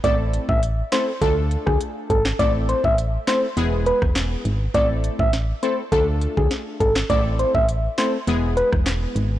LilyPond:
<<
  \new Staff \with { instrumentName = "Soft synth lead" } { \time 4/4 \key a \minor \tempo 4 = 102 d''16 r8 e''16 r8 c''16 r16 a'16 r8 gis'16 r8 a'16 r16 | d''16 r16 c''16 e''16 r8 c''16 r8. b'16 r4 r16 | d''16 r8 e''16 r8 c''16 r16 a'16 r8 gis'16 r8 a'16 r16 | d''16 r16 c''16 e''16 r8 c''16 r8. b'16 r4 r16 | }
  \new Staff \with { instrumentName = "Synth stab" } { \time 4/4 \key a \minor <a c' e' a'>4 r8 <a c' e' a'>8 <a d' f' a'>2 | <a c' e' a'>4 r8 <a c' e' a'>8 <gis b e' gis'>2 | <a c' e' a'>4 r8 <a c' e' a'>8 <a d' f' a'>2 | <a c' e' a'>4 r8 <a c' e' a'>8 <gis b e' gis'>2 | }
  \new Staff \with { instrumentName = "FM bass" } { \clef bass \time 4/4 \key a \minor a,,8. a,,8. r8 d,8. d,16 r8 gis,,8 | a,,8. a,,8. r8 e,,8. e,,8. gis,,8 | a,,8. a,,8. r8 d,8. d,16 r8 gis,,8 | a,,8. a,,8. r8 e,,8. e,,8. gis,,8 | }
  \new DrumStaff \with { instrumentName = "Drums" } \drummode { \time 4/4 <hh bd>8 hh16 bd16 hh8 <hc hh sn>8 <hh bd>8 hh16 <bd ss>16 hh8 <hh bd>16 <hc sn>16 | <hh bd>8 hh16 bd16 hh8 <hc hh sn>8 hh8 hh16 <bd ss>16 <hc hh sn>8 hh8 | <hh bd>8 hh16 bd16 <hh sn>8 hh8 <hh bd>8 hh16 bd16 <hh sn>8 <hh bd>16 <hc sn>16 | <hh bd>8 hh16 bd16 hh8 <hc hh sn>8 hh8 hh16 <bd ss>16 <hc hh sn>8 hh8 | }
>>